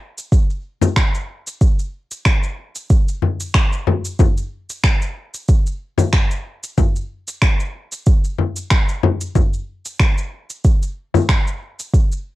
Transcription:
0.18 cabasa medium
0.32 kick loud
0.32 cabasa soft
0.50 cabasa soft
0.81 frame drum medium
0.81 cabasa medium
0.96 finger snap medium
0.96 kick medium
0.96 cabasa medium
1.14 cabasa soft
1.47 cabasa medium
1.61 kick loud
1.61 cabasa medium
1.79 cabasa soft
2.11 cabasa medium
2.25 finger snap medium
2.25 kick loud
2.25 cabasa medium
2.43 cabasa soft
2.75 cabasa medium
2.90 kick loud
2.90 cabasa medium
3.08 cabasa soft
3.22 frame drum medium
3.40 cabasa medium
3.54 finger snap medium
3.54 kick loud
3.54 cabasa medium
3.73 cabasa soft
3.87 frame drum medium
4.05 cabasa medium
4.19 kick loud
4.19 frame drum medium
4.19 cabasa medium
4.37 cabasa soft
4.70 cabasa medium
4.84 finger snap medium
4.84 kick loud
4.84 cabasa medium
5.02 cabasa soft
5.34 cabasa medium
5.49 kick loud
5.49 cabasa medium
5.66 cabasa soft
5.98 frame drum loud
5.98 cabasa medium
6.13 finger snap loud
6.13 kick loud
6.13 cabasa soft
6.31 cabasa soft
6.63 cabasa medium
6.78 kick loud
6.78 frame drum medium
6.78 cabasa medium
6.96 cabasa soft
7.28 cabasa medium
7.42 finger snap medium
7.42 kick loud
7.42 cabasa medium
7.60 cabasa soft
7.92 cabasa medium
8.06 kick loud
8.06 cabasa medium
8.24 cabasa soft
8.38 frame drum medium
8.56 cabasa medium
8.71 finger snap medium
8.71 kick loud
8.71 cabasa medium
8.89 cabasa soft
9.03 frame drum loud
9.21 cabasa medium
9.35 kick loud
9.35 frame drum medium
9.35 cabasa soft
9.53 cabasa soft
9.85 cabasa medium
10.00 finger snap medium
10.00 kick loud
10.00 cabasa medium
10.18 cabasa soft
10.50 cabasa medium
10.64 kick loud
10.64 cabasa medium
10.82 cabasa soft
11.14 frame drum medium
11.14 cabasa medium
11.29 finger snap medium
11.29 kick loud
11.29 cabasa medium
11.47 cabasa soft
11.79 cabasa medium
11.94 kick medium
11.94 cabasa medium
12.12 cabasa soft

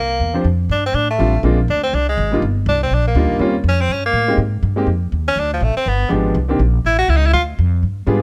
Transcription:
0.00 0.19 C2 medium
0.00 0.37 A#3 medium
0.20 0.44 E2 medium
0.34 0.43 F3 medium
0.34 0.44 C4 medium
0.34 0.44 D4 medium
0.34 0.44 G4 medium
0.34 0.44 C5 medium
0.44 0.69 F2 medium
0.69 0.93 G2 medium
0.69 0.84 D4 medium
0.86 0.97 C4 medium
0.94 1.18 A2 medium
0.94 1.09 D4 medium
1.10 1.42 A3 medium
1.18 1.42 A1 medium
1.18 1.32 G3 medium
1.18 1.32 A3 medium
1.18 1.32 C4 medium
1.18 1.32 D4 medium
1.18 1.32 F4 medium
1.43 1.67 A#1 medium
1.43 1.57 G#3 medium
1.43 1.57 A#3 medium
1.43 1.57 C4 medium
1.43 1.57 D4 medium
1.43 1.58 F4 medium
1.68 1.92 D2 medium
1.68 1.83 D4 medium
1.83 1.96 C4 medium
1.93 2.17 C2 medium
1.93 2.08 D4 medium
2.09 2.40 G#3 medium
2.18 2.41 G#1 medium
2.32 2.41 G3 medium
2.32 2.41 A#3 medium
2.32 2.41 D4 medium
2.32 2.42 D#4 medium
2.32 2.42 F4 medium
2.42 2.66 G1 medium
2.66 2.90 C2 loud
2.66 2.81 D4 medium
2.83 2.95 C4 medium
2.91 3.14 A#1 medium
2.91 3.07 D4 medium
3.07 3.39 A#3 medium
3.15 3.25 D2 medium
3.15 3.38 G3 medium
3.15 3.38 A#3 medium
3.15 3.40 D4 medium
3.15 3.41 D#4 medium
3.15 3.40 F4 medium
3.23 3.31 A#1 medium
3.31 3.39 G1 medium
3.39 3.63 D#2 medium
3.39 3.53 G3 medium
3.39 3.53 A#3 medium
3.39 3.54 C4 medium
3.39 3.54 C#4 medium
3.39 3.54 F4 medium
3.64 3.88 F2 medium
3.69 3.83 C#4 medium
3.81 3.94 C4 medium
3.89 4.12 G2 medium
3.93 4.06 C#4 medium
4.06 4.37 A#3 medium
4.13 4.37 A2 medium
4.28 4.37 G#3 medium
4.28 4.37 A#3 medium
4.28 4.38 C4 medium
4.28 4.38 D#4 medium
4.28 4.38 G4 medium
4.38 4.62 G#2 medium
4.63 4.86 G2 medium
4.76 4.86 G#3 medium
4.76 4.86 A#3 medium
4.76 4.86 C4 medium
4.76 4.87 D#4 medium
4.76 4.87 G4 medium
4.87 5.11 F2 medium
5.12 5.35 D#2 medium
5.28 5.41 C#4 loud
5.36 5.60 D2 medium
5.36 5.53 D4 medium
5.54 5.65 F3 medium
5.61 5.75 A1 medium
5.61 5.77 A3 medium
5.77 5.90 C4 medium
5.86 6.10 G1 medium
5.86 6.12 B3 medium
6.09 6.34 G#1 medium
6.09 6.34 F3 medium
6.09 6.34 G#3 medium
6.09 6.35 B3 medium
6.09 6.35 D4 medium
6.09 6.35 G4 medium
6.35 6.59 C2 medium
6.48 6.58 D#3 medium
6.48 6.59 A#3 medium
6.48 6.59 C4 medium
6.48 6.59 D4 medium
6.48 6.59 G4 medium
6.59 6.83 A#1 medium
6.85 7.08 A1 medium
6.85 6.98 E4 medium
6.99 7.11 F#4 loud
7.08 7.33 C#2 medium
7.08 7.18 E4 medium
7.17 7.28 D#4 medium
7.26 7.33 E4 medium
7.33 7.57 D2 medium
7.33 7.42 F4 medium
7.59 7.82 F2 medium
7.83 8.06 G2 medium
8.07 8.22 G#2 medium
8.07 8.20 G3 medium
8.07 8.20 B3 medium
8.07 8.21 D4 medium
8.07 8.21 F4 medium
8.07 8.21 G#4 medium

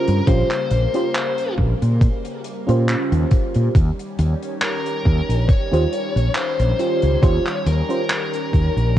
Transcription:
0.00 3.71 C#3 medium
0.00 3.71 G3 medium
0.00 3.71 A#3 medium
0.00 0.22 C#4 medium
0.00 0.23 F4 medium
0.00 0.23 G4 medium
0.00 0.28 A#4 medium
0.00 0.23 C5 medium
0.07 0.20 G2 medium
0.07 closed hi-hat medium
0.27 0.42 A#1 loud
0.27 0.48 C#4 medium
0.27 0.48 F4 medium
0.27 0.49 G4 medium
0.27 1.54 C5 loud
0.27 0.49 C5 medium
0.27 kick loud
0.27 closed hi-hat loud
0.51 clap soft
0.51 closed hi-hat medium
0.71 0.85 A#1 medium
0.71 closed hi-hat medium
0.94 1.05 C#4 medium
0.94 1.05 F4 medium
0.94 1.06 G4 medium
0.94 1.06 C5 medium
0.94 closed hi-hat medium
1.15 clap loud
1.15 closed hi-hat medium
1.38 closed hi-hat medium
1.58 1.72 A#1 loud
1.58 kick medium
1.82 2.07 A#2 medium
1.82 closed hi-hat medium
2.01 kick loud
2.01 closed hi-hat medium
2.25 closed hi-hat medium
2.44 closed hi-hat medium
2.67 2.94 A#2 medium
2.67 3.72 C#4 medium
2.67 3.72 F4 medium
2.67 3.73 G4 medium
2.67 3.73 C5 loud
2.67 closed hi-hat medium
2.88 clap loud
2.88 closed hi-hat medium
3.12 3.24 D#2 medium
3.12 closed hi-hat medium
3.31 kick loud
3.31 closed hi-hat medium
3.54 3.68 A#2 medium
3.54 closed hi-hat soft
3.75 3.90 D#2 loud
3.75 8.99 D#3 medium
3.75 8.99 G3 medium
3.75 8.99 C#4 medium
3.75 kick loud
3.75 closed hi-hat loud
3.99 closed hi-hat medium
4.19 4.33 D#2 medium
4.19 closed hi-hat medium
4.43 closed hi-hat medium
4.61 5.48 A#4 medium
4.61 clap loud
4.61 closed hi-hat medium
4.86 closed hi-hat medium
5.05 5.20 D#2 loud
5.05 kick medium
5.29 5.48 A#1 medium
5.29 closed hi-hat medium
5.49 6.32 C#5 loud
5.49 muted fretless electric bass stroke soft
5.49 kick loud
5.49 closed hi-hat medium
5.72 5.85 D#2 medium
5.72 5.83 C#4 medium
5.72 5.83 F4 medium
5.72 5.84 G4 medium
5.72 5.84 C5 loud
5.72 closed hi-hat medium
5.93 closed hi-hat medium
6.16 6.28 A#1 medium
6.16 closed hi-hat medium
6.35 7.23 C5 loud
6.35 clap loud
6.35 closed hi-hat medium
6.60 6.72 A#1 loud
6.60 closed hi-hat medium
6.79 7.18 C#4 medium
6.79 7.18 F4 medium
6.79 7.18 G4 medium
6.79 7.19 C5 medium
6.79 closed hi-hat medium
7.02 7.15 C#2 medium
7.02 closed hi-hat medium
7.22 7.37 D#2 loud
7.22 7.43 C#4 medium
7.22 7.44 F4 medium
7.22 7.44 G4 medium
7.22 7.44 C5 loud
7.22 7.67 C#5 loud
7.22 kick loud
7.22 closed hi-hat loud
7.46 clap soft
7.46 closed hi-hat medium
7.66 7.81 D#2 medium
7.66 8.99 A#4 medium
7.66 closed hi-hat medium
7.89 8.01 C#4 medium
7.89 8.01 F4 medium
7.89 8.01 G4 medium
7.89 8.01 C5 loud
7.89 closed hi-hat medium
8.10 clap loud
8.10 closed hi-hat loud
8.34 closed hi-hat medium
8.53 8.68 D#2 medium
8.53 kick medium
8.53 closed hi-hat medium
8.77 8.99 A#1 medium
8.77 closed hi-hat medium

